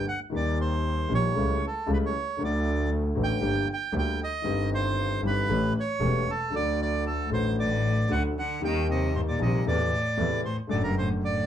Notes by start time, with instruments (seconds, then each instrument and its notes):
0.08 bandoneon F#5
0.30 grand piano D#2 D#3 G3 A#3 G4, double bass D#2
0.36 bandoneon D5
0.61 bandoneon C5
1.09 grand piano A#1 A#2 D#3 G3 A#3 G4, double bass A#1
1.14 bandoneon C#5
1.35 grand piano C#2 C#3 G3 A3 E4, double bass C#2
1.67 bandoneon A4
1.86 grand piano C#2 C#3 G3 A3 E4, double bass C#2
1.93 bandoneon B4
2.06 bandoneon C#5
2.37 grand piano D2 D3 F#3 A3 F#4, double bass D2
2.45 bandoneon D5
3.15 grand piano A1 A2 D3 F#3 A3 F#4, double bass A1
3.23 bandoneon G5
3.40 grand piano G1 G2 D3 G3 A#3 G4, double bass G1
3.73 bandoneon G5
3.92 grand piano D2 D3 G3 A#3 G4, double bass D2
3.98 bandoneon G5
4.24 bandoneon D#5
4.42 grand piano G1 G2 D#3 G3 C4 G4, double bass G1
4.74 bandoneon C5
5.22 grand piano G1 G2 D#3 G3 C4 G4, double bass G1
5.27 bandoneon B4
5.48 double bass A1, grand piano A1 A2 E3 A3 C#4 G4
5.80 bandoneon C#5
6.00 double bass E1, grand piano E1 E2 E3 A3 C#4 G4
6.30 bandoneon A4
6.50 grand piano D2 D3 F#3 A3, double bass D2
6.54 grand piano F#4, bandoneon D5
6.82 bandoneon D5
7.07 bandoneon A4
7.29 grand piano A1 A2 D3 F#3 A3 F#4, double bass A1
7.33 bandoneon C5
7.60 cello A2, bandoneon D5
8.08 grand piano D2 D3 F#3 A3 F#4, double bass D2, cello D3, bandoneon F#5
8.39 cello D3, bandoneon F#5
8.60 grand piano D#2 D#3 G3 A#3, double bass D#2
8.64 cello D#3, grand piano G4, bandoneon G5
8.90 cello C3, bandoneon D#5
9.15 cello G2, bandoneon C5
9.28 cello A#2, bandoneon D5
9.38 grand piano A#1 A#2 D#3 G3 A#3 G4, double bass A#1, bandoneon D#5
9.43 cello C3
9.66 double bass E2, grand piano E2 C3 E3 A3 E4, cello A2, bandoneon D5
10.17 grand piano E2 C3 E3 A3 E4, double bass E2
10.45 cello A2, bandoneon C5
10.67 double bass F#1, grand piano F#2 D3 F#3 A3, cello A2, bandoneon D5
10.71 grand piano F#4
10.83 cello G2, bandoneon A#4
10.98 cello A2, bandoneon C5
11.23 cello A2, bandoneon D5